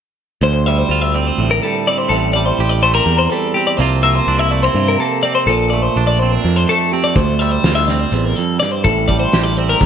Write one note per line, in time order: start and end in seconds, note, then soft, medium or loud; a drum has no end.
0.41 0.82 D2 medium
0.41 2.11 D2 medium
0.41 0.66 C5 medium
0.66 1.64 G3 medium
0.66 0.79 E5 medium
0.79 1.01 C5 medium
0.89 1.30 D2 medium
0.89 2.08 F4 medium
1.01 1.14 E5 medium
1.14 1.88 C4 medium
1.14 1.27 D5 medium
1.27 1.51 C5 medium
1.38 1.59 A1 medium
1.38 2.10 A2 medium
1.51 1.63 A#4 medium
1.63 2.36 G3 medium
1.63 1.87 A4 medium
1.87 2.83 C4 medium
1.87 1.98 D5 medium
1.98 2.10 C5 medium
2.09 2.51 A1 medium
2.09 3.07 A2 medium
2.09 2.34 A4 medium
2.33 3.31 G3 medium
2.33 2.46 D5 medium
2.46 2.69 C5 medium
2.59 3.00 A1 medium
2.59 3.77 G4 medium
2.69 2.82 D5 medium
2.83 2.94 A3 medium
2.83 2.94 C5 medium
2.94 3.54 C4 soft
2.94 3.18 A#4 medium
3.06 3.27 E2 medium
3.06 3.76 E2 medium
3.18 3.30 C5 medium
3.30 3.79 G3 soft
3.30 3.54 A4 medium
3.54 3.80 C4 soft
3.54 3.67 G4 medium
3.67 3.77 D5 medium
3.77 4.20 C2 medium
3.77 4.75 C3 medium
3.77 7.29 F3 soft
3.77 4.03 A#3 medium
3.77 4.51 C4 medium
3.77 4.02 C5 medium
3.82 4.28 F4 medium
4.03 5.00 A#3 medium
4.03 4.15 E5 medium
4.15 4.39 C5 medium
4.27 4.68 C2 medium
4.27 4.40 D4 medium
4.39 5.48 E4 soft
4.39 4.51 E5 medium
4.51 4.64 A3 medium
4.51 4.63 D5 medium
4.63 5.23 C4 soft
4.63 4.87 C5 medium
4.74 4.95 G2 medium
4.74 5.45 C3 medium
4.88 5.00 A#4 medium
5.00 5.45 A#3 medium
5.00 5.24 A4 medium
5.23 5.52 C4 medium
5.23 5.34 D5 medium
5.35 5.47 C5 medium
5.47 5.88 A#1 medium
5.47 6.44 A#2 medium
5.47 5.71 A4 medium
5.70 6.70 A3 medium
5.70 5.82 D5 medium
5.82 6.07 C5 medium
5.96 6.37 A#1 medium
5.96 7.65 D4 medium
6.07 6.19 D5 medium
6.19 6.93 C4 medium
6.19 6.32 C5 medium
6.32 6.56 A#4 medium
6.44 6.65 F2 medium
6.44 7.14 F2 medium
6.56 6.68 C5 medium
6.69 7.41 A3 soft
6.69 6.92 A4 medium
6.92 7.20 C4 medium
6.92 7.04 G4 medium
7.04 7.16 D5 medium
7.16 7.57 D2 medium
7.16 8.12 D2 medium
7.16 7.39 C5 medium
7.16 kick medium
7.16 closed hi-hat medium
7.39 9.09 G3 medium
7.39 7.51 E5 medium
7.39 closed hi-hat soft
7.51 7.75 C5 medium
7.64 8.05 D2 medium
7.64 8.82 F4 medium
7.64 snare medium
7.64 closed hi-hat medium
7.75 7.88 E5 medium
7.88 9.58 C4 medium
7.88 7.99 D5 medium
7.88 snare soft
7.88 closed hi-hat medium
7.99 8.24 C5 medium
8.12 8.33 A1 medium
8.12 8.37 E2 medium
8.12 closed hi-hat medium
8.24 8.36 A#4 medium
8.36 8.61 F2 medium
8.36 8.59 A4 medium
8.36 closed hi-hat soft
8.60 8.85 G2 medium
8.60 8.72 D5 medium
8.60 snare soft
8.60 closed hi-hat soft
8.72 8.84 C5 medium
8.84 9.25 A1 medium
8.84 9.81 A2 medium
8.84 9.08 A4 medium
8.84 kick medium
8.84 closed hi-hat medium
9.08 9.86 G3 medium
9.08 9.19 D5 medium
9.08 kick medium
9.08 closed hi-hat medium
9.19 9.44 C5 medium
9.33 9.74 A1 medium
9.33 9.86 G4 medium
9.33 snare medium
9.33 closed hi-hat medium
9.44 9.57 D5 medium
9.57 9.86 C4 medium
9.57 9.69 C5 medium
9.57 closed hi-hat medium
9.69 9.86 A#4 medium
9.81 9.86 E2 medium
9.81 kick medium
9.81 snare soft
9.81 closed hi-hat medium